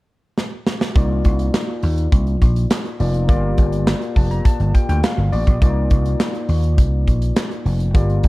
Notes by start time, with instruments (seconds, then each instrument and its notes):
0.38 snare
0.67 snare
0.81 snare
0.95 slap bass C2, tine electric piano A#3 D#4 F4 D5, kick, closed hi-hat
1.25 slap bass C2, kick, closed hi-hat
1.39 closed hi-hat
1.54 snare, clap, closed hi-hat
1.83 slap bass D#2, open hi-hat
1.98 closed hi-hat
2.12 slap bass C2, kick, closed hi-hat
2.27 closed hi-hat
2.42 slap bass A#1, kick, closed hi-hat
2.56 closed hi-hat
2.70 snare, clap, closed hi-hat
2.85 closed hi-hat
2.99 slap bass F1, tine electric piano A#3 D#4 F4 D5, open hi-hat
3.14 closed hi-hat
3.28 slap bass G1, tine electric piano A#3 F4 G4 D5, kick, closed hi-hat
3.58 slap bass G1, kick, closed hi-hat
3.72 closed hi-hat
3.87 snare, clap, closed hi-hat
4.02 closed hi-hat
4.16 slap bass F1, tine electric piano A5, kick, open hi-hat
4.31 tine electric piano A#5, closed hi-hat
4.45 tine electric piano A5, kick, closed hi-hat
4.60 slap bass G1, closed hi-hat
4.74 tine electric piano G5, kick, closed hi-hat
4.89 slap bass D2, tine electric piano G5, closed hi-hat
5.04 tine electric piano F5, snare, clap, closed hi-hat
5.18 slap bass G1
5.32 slap bass A1, tine electric piano D5, open hi-hat
5.47 slap bass A#1, kick, closed hi-hat
5.61 slap bass C2, tine electric piano A#3 D#4 F4 D5, kick, closed hi-hat
5.90 slap bass C2, kick, closed hi-hat
6.06 closed hi-hat
6.20 snare, clap, closed hi-hat
6.35 closed hi-hat
6.49 slap bass D#2, open hi-hat
6.64 closed hi-hat
6.78 slap bass C2, kick, closed hi-hat
7.08 slap bass A#1, kick, closed hi-hat
7.22 closed hi-hat
7.36 snare, clap, closed hi-hat
7.51 closed hi-hat
7.65 slap bass F1, open hi-hat
7.80 closed hi-hat
7.94 slap bass G1, tine electric piano A#3 F4 G4 D5, kick, closed hi-hat
8.10 closed hi-hat
8.23 slap bass G1, kick, closed hi-hat